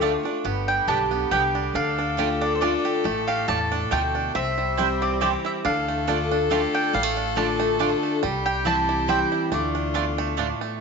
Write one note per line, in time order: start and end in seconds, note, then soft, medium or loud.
0.00 0.15 D2 loud
0.00 0.24 D3 medium
0.00 0.11 A3 medium
0.00 0.24 A3 medium
0.00 0.46 A3 medium
0.00 0.21 D4 medium
0.00 0.24 D4 medium
0.00 0.25 F4 medium
0.00 0.11 F4 medium
0.00 0.22 F4 loud
0.00 0.41 G4 medium
0.00 0.12 D5 medium
0.00 0.21 F5 medium
0.00 0.12 A5 loud
0.23 0.45 D4 medium
0.23 0.44 F4 medium
0.45 0.78 G1 medium
0.45 1.28 G2 loud
0.45 1.07 B3 medium
0.45 1.77 G4 medium
0.68 1.28 G3 medium
0.68 0.87 G5 loud
0.87 1.25 B1 medium
0.87 1.10 D3 medium
0.87 1.10 G3 medium
0.87 0.98 B3 medium
0.87 1.11 B3 medium
0.87 1.55 D4 medium
0.87 0.98 G4 medium
0.87 1.10 G4 medium
0.87 0.98 D5 medium
0.87 0.98 G5 loud
0.87 1.31 A5 loud
1.11 1.71 B3 medium
1.11 1.32 B3 soft
1.11 1.31 G4 medium
1.31 1.68 C2 medium
1.31 1.73 D3 medium
1.31 1.74 G3 medium
1.31 1.41 B3 medium
1.31 1.74 B3 medium
1.31 1.75 G4 medium
1.31 1.42 G4 loud
1.31 1.74 G4 medium
1.31 1.42 D5 medium
1.31 1.75 G5 medium
1.31 1.42 G5 medium
1.55 1.75 D4 medium
1.74 2.74 D2 medium
1.74 2.16 D3 medium
1.74 1.97 D4 medium
1.74 4.34 A4 loud
1.74 2.44 F5 loud
1.98 2.41 D4 medium
2.17 2.59 D3 medium
2.17 2.28 A3 medium
2.17 2.60 A3 loud
2.17 2.60 D4 medium
2.17 2.28 F4 loud
2.17 2.60 F4 medium
2.17 2.80 G4 medium
2.17 2.28 D5 medium
2.17 2.28 A5 loud
2.41 2.61 D4 medium
2.41 2.54 D5 medium
2.55 2.61 C5 medium
2.61 3.03 D3 medium
2.61 2.71 A3 medium
2.61 3.03 A3 medium
2.61 3.24 D4 medium
2.61 3.03 D4 loud
2.61 2.71 F4 medium
2.61 3.04 F4 loud
2.61 2.92 D5 medium
2.61 2.72 D5 loud
2.61 2.72 A5 loud
2.85 3.27 G4 medium
3.04 3.38 A1 medium
3.04 3.47 A2 medium
3.04 3.47 A3 medium
3.28 3.88 G4 medium
3.28 3.47 F5 medium
3.48 3.85 E2 medium
3.48 3.89 A2 loud
3.48 3.58 A3 medium
3.48 3.90 A3 medium
3.48 3.58 F4 medium
3.48 3.58 D5 medium
3.48 3.89 A5 loud
3.48 3.58 A5 loud
3.72 4.14 D4 medium
3.91 4.28 D2 medium
3.91 4.33 B2 medium
3.91 4.35 A3 medium
3.91 4.01 A3 medium
3.91 4.01 F4 medium
3.91 4.01 D5 medium
3.91 4.35 G5 loud
3.91 4.01 A5 medium
4.15 4.35 D4 medium
4.35 5.35 C2 medium
4.35 5.17 C3 loud
4.35 4.97 C4 medium
4.35 5.40 C5 loud
4.35 5.03 E5 loud
4.58 5.17 G3 medium
4.77 5.19 E3 medium
4.77 5.20 G3 loud
4.77 4.87 C4 medium
4.77 5.20 C4 medium
4.77 4.88 E4 medium
4.77 5.40 E4 medium
4.77 5.20 E4 loud
4.77 4.88 C5 medium
4.77 4.88 G5 loud
5.02 5.61 C4 medium
5.02 5.20 D5 medium
5.21 5.63 E3 medium
5.21 5.63 G3 medium
5.21 5.31 C4 medium
5.21 5.63 C4 loud
5.21 5.31 E4 medium
5.21 5.63 E4 loud
5.21 5.65 G4 medium
5.21 5.31 C5 medium
5.21 5.28 D5 medium
5.21 5.31 G5 medium
5.45 5.65 E4 medium
5.45 5.51 E5 medium
5.65 6.64 D2 medium
5.65 6.06 D3 loud
5.65 6.07 D4 medium
5.65 8.25 A4 loud
5.65 6.47 F5 medium
5.88 6.47 A3 medium
6.07 6.49 D3 medium
6.07 6.17 A3 medium
6.07 6.49 A3 medium
6.07 6.30 D4 medium
6.07 6.49 D4 medium
6.07 6.17 F4 medium
6.07 6.49 F4 loud
6.07 6.17 D5 medium
6.07 6.18 A5 loud
6.32 6.73 D4 medium
6.50 6.91 D3 medium
6.50 6.60 A3 medium
6.50 6.92 A3 medium
6.50 6.92 D4 medium
6.50 6.60 F4 loud
6.50 6.92 F4 medium
6.50 7.13 G4 medium
6.50 6.60 D5 medium
6.50 6.72 F5 medium
6.50 6.61 A5 medium
6.75 7.16 D4 medium
6.75 6.93 G5 medium
6.93 7.93 A1 medium
6.93 7.76 A2 medium
6.93 7.03 G3 medium
6.93 7.37 F5 medium
7.03 7.37 A3 medium
7.17 7.36 D4 medium
7.35 7.77 D3 medium
7.35 7.78 A3 medium
7.35 7.46 A3 medium
7.35 7.78 D4 medium
7.35 7.80 D4 medium
7.35 7.46 F4 loud
7.35 7.78 F4 medium
7.35 7.46 D5 loud
7.35 7.47 A5 loud
7.35 7.99 A5 medium
7.60 8.02 A3 medium
7.79 8.21 D3 medium
7.79 7.89 A3 medium
7.79 8.21 A3 medium
7.79 8.21 D4 medium
7.79 8.23 D4 medium
7.79 7.89 F4 loud
7.79 8.21 F4 loud
7.79 7.89 D5 medium
7.79 7.89 A5 loud
8.03 8.22 A3 medium
8.23 9.22 C2 medium
8.23 8.64 G3 medium
8.23 9.52 G4 loud
8.46 9.05 G4 medium
8.46 8.66 G5 loud
8.65 9.06 E3 medium
8.65 9.08 G3 medium
8.65 9.07 G3 medium
8.65 8.75 C4 medium
8.65 9.07 C4 loud
8.65 8.75 E4 loud
8.65 9.07 E4 loud
8.65 8.75 C5 loud
8.65 8.76 G5 loud
8.65 9.09 A5 loud
8.89 9.31 E4 medium
9.08 9.49 E3 medium
9.08 9.50 G3 medium
9.08 9.51 G3 medium
9.08 9.18 C4 medium
9.08 9.50 C4 loud
9.08 9.18 E4 medium
9.08 9.50 E4 medium
9.08 9.18 C5 medium
9.08 9.18 G5 loud
9.08 9.54 G5 loud
9.32 9.52 E4 medium
9.52 10.51 D2 loud
9.52 10.34 D3 medium
9.52 10.13 A3 medium
9.52 10.57 F4 medium
9.52 10.58 D5 medium
9.75 9.94 D4 medium
9.94 10.36 B2 medium
9.94 10.04 A3 medium
9.94 10.38 D4 medium
9.94 10.04 F4 medium
9.94 10.04 D5 medium
9.94 10.04 A5 loud
10.18 10.60 A3 medium
10.37 10.79 A2 medium
10.37 10.47 A3 medium
10.37 10.80 D4 medium
10.37 10.47 F4 loud
10.37 10.47 D5 medium
10.37 10.47 A5 medium
10.61 10.81 A3 medium